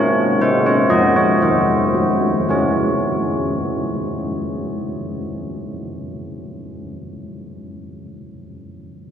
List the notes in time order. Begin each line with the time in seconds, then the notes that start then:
Already playing: A#3 G#4 C#5
0.41 G#3 F#4 C5
0.66 C#5
0.90 F3 D#5
1.16 C#5
1.42 D#3 C5
1.95 F#3
2.49 C#4 G#4 C#5